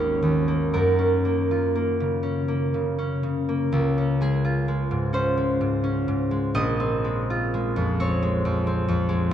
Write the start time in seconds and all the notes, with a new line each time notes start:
Already playing: G#1 D#2 G#3 A#3 F#4 C#5 D#5
0.00 C#4
0.22 D#2
0.48 A#3
0.74 F#2 A#4
0.99 C#4
1.25 A#3
1.51 F4
1.75 A#3
2.00 C#3
2.23 C#4
2.48 A#3
2.74 C#3
2.98 C#4
3.23 C#3
3.49 A#3
3.72 C#2
3.98 C#4
4.21 G#3 G#4
4.45 F4
4.68 G#3
4.91 G#2
5.13 C#4 C5
5.37 G#3
5.61 G#2
5.84 C#4
6.08 G#2
6.31 G#3
6.54 A#1 D#5
6.80 C4
7.04 G#3
7.30 F4
7.54 G#3
7.76 F2
8.00 C4 C#5
8.22 G#3
8.45 F2
8.67 C4
8.88 F2
9.09 G#3